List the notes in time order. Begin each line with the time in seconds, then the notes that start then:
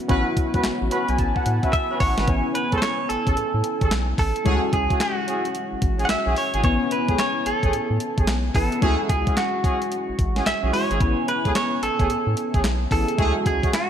0.08 A1 B3 C#4 E4 F#4 B4, kick, closed hi-hat
0.37 kick, closed hi-hat
0.54 C#2 C#4 F#4 B4, kick, closed hi-hat
0.64 A1, snare, clap, closed hi-hat
0.82 A1
0.91 C#4 F#4 B4 B5, closed hi-hat
1.08 B1 G#5, closed hi-hat
1.18 A1 A5, kick, closed hi-hat
1.36 F#5, kick
1.46 A2, closed hi-hat
1.63 C#4 F#4 B4 E5, kick, closed hi-hat
1.73 E5, kick, closed hi-hat
1.90 C#4 F#4 B4
2.00 A1 C#5 F#5, kick, open hi-hat
2.17 G#1 C#4 F#4 B4, snare, closed hi-hat
2.27 A1 B3 C#4 E4 G#5, kick, closed hi-hat
2.55 B4, closed hi-hat
2.72 C#2 C#4 G#4 A4, kick, closed hi-hat
2.78 C5
2.82 C#5, snare, clap, closed hi-hat
3.09 A1 A4, closed hi-hat
3.26 A1 C#4 G#4 A4, kick, closed hi-hat
3.37 A2, closed hi-hat
3.54 A2
3.64 closed hi-hat
3.81 A1 C#4 G#4 A4, kick, closed hi-hat
3.91 B1, snare, clap, closed hi-hat
4.18 A1 A4, kick, open hi-hat
4.36 closed hi-hat
4.45 D2 G#3 C#4 E4 F#4 G#4, kick, closed hi-hat
4.73 C#2 G#4, kick, closed hi-hat
4.90 C#4 E4 F#4 G#4, kick, closed hi-hat
5.00 F#4, snare, clap, closed hi-hat
5.27 C#4 E4 F#4 G#4, closed hi-hat
5.45 closed hi-hat
5.55 closed hi-hat
5.72 A1
5.82 A1, kick, closed hi-hat
5.99 C#4 E4 F#4 G#4, closed hi-hat
6.05 F#5, snare
6.09 B1 E5, clap, closed hi-hat
6.26 B1 C#4 E4 F#4 G#4
6.36 C#5, open hi-hat
6.54 G#1 C#4 E4 F#4 G#4, closed hi-hat
6.64 A1 B3 C#4 E4 C#5 G#5, kick, closed hi-hat
6.91 B4, closed hi-hat
7.08 C#2 A3 C#4 G#4, kick, closed hi-hat
7.19 C#5, snare, clap, closed hi-hat
7.46 A1 A4, closed hi-hat
7.63 A1 A3 C#4 G#4, kick, closed hi-hat
7.73 A2, closed hi-hat
7.90 A2
8.00 closed hi-hat
8.17 A1 A3 C#4 G#4, kick, closed hi-hat
8.27 B1, snare, clap, closed hi-hat
8.55 A1 B3 C#4 E4 A4 B4, kick, open hi-hat
8.72 closed hi-hat
8.82 D2 G#3 C#4 E4 F#4 G#4, kick, closed hi-hat
9.09 C#2 G#4, kick, closed hi-hat
9.27 C#4 E4 F#4 G#4, kick, closed hi-hat
9.37 F#4, snare, clap, closed hi-hat
9.64 C#4 E4 F#4 G#4, kick, closed hi-hat
9.82 closed hi-hat
9.92 closed hi-hat
10.09 A1
10.19 A1, kick, closed hi-hat
10.36 C#4 E4 F#4 G#4, snare, closed hi-hat
10.46 B1 E5, snare, clap, closed hi-hat
10.63 B1 C#4 E4 F#4 G#4
10.73 G#3 C#4 E4 F#4 C#5, open hi-hat
10.90 G#1 C#4 E4 F#4 G#4, closed hi-hat
11.00 A1 B3 C#4 E4 G#5, kick, closed hi-hat
11.28 B4, closed hi-hat
11.45 C#2 A3 C#4 G#4, kick, closed hi-hat
11.55 C#5, snare, clap, closed hi-hat
11.82 A1 A4, closed hi-hat
11.99 A1 A3 C#4 G#4, kick, closed hi-hat
12.09 A2, closed hi-hat
12.27 A2
12.37 closed hi-hat
12.54 A1 A3 C#4 G#4, kick, closed hi-hat
12.64 B1, snare, clap, closed hi-hat
12.91 A1 B3 C#4 E4 G#4 A4, kick, open hi-hat
13.08 closed hi-hat
13.18 D2 G#3 C#4 E4 F#4 G#4, kick, closed hi-hat
13.46 C#2 G#4, kick, closed hi-hat
13.62 C#4 E4 F#4 G#4, kick, closed hi-hat
13.73 F#4, snare, clap, closed hi-hat